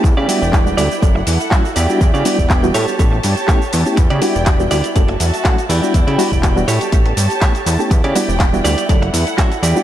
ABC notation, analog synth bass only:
X:1
M:4/4
L:1/16
Q:"Swing 16ths" 1/4=122
K:Edor
V:1 name="Analog synth bass" clef=bass
E,, C, z E,,,3 D,, z F,,,2 E,, z3 E,, z | E,, C, z E,,,3 A,, z A,,,2 G,, z3 E,, z | E,, C, z E,,,3 D,, z F,,,2 E,, z3 E,, z | E,, C, z E,,,3 A,, z A,,,2 G,, z3 E,, z |
E,, C, z E,,,3 D,, z F,,,2 E,, z3 E,, z |]